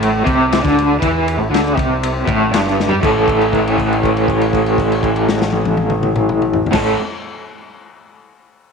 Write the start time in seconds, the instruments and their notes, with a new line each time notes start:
Already playing: fingered electric bass A1, overdriven electric guitar A2
0.03 ride
0.25 fingered electric bass C2, overdriven electric guitar C3, kick, ride
0.52 snare, ride
0.62 fingered electric bass D2, overdriven electric guitar D3, kick
0.67 snare
0.79 ride
0.99 fingered electric bass E2, overdriven electric guitar E3, kick, ride
1.28 ride
1.37 fingered electric bass A1, overdriven electric guitar A2
1.50 fingered electric bass D2, overdriven electric guitar D3
1.54 snare, ride
1.76 fingered electric bass C2, overdriven electric guitar C3, kick, ride
2.03 ride
2.26 fingered electric bass A1, overdriven electric guitar A2, kick, ride
2.50 fingered electric bass G1, overdriven electric guitar G2, ride
2.54 snare
2.67 snare
2.80 snare
2.88 fingered electric bass G2, overdriven electric guitar G3, floor tom
3.00 fingered electric bass A1, overdriven electric guitar A2 E3 A3 C#4, kick, crash
3.05 overdriven electric guitar A4
3.28 kick, crash
3.41 crash
3.53 kick, crash
3.67 crash
3.78 kick, crash
3.93 crash
4.03 kick, crash
4.17 crash
4.28 kick, crash
4.41 crash
4.53 kick, crash
4.66 crash
4.78 kick, crash
4.92 crash
5.03 kick, crash
5.16 crash
5.29 snare
5.42 snare
5.53 high tom
5.65 high tom
5.77 high tom
5.90 mid tom
6.03 mid tom
6.16 mid tom
6.29 mid tom
6.42 mid tom
6.54 floor tom
6.66 floor tom
6.71 fingered electric bass A1, overdriven electric guitar A2 E3 A3 C#4 A4, kick, snare, crash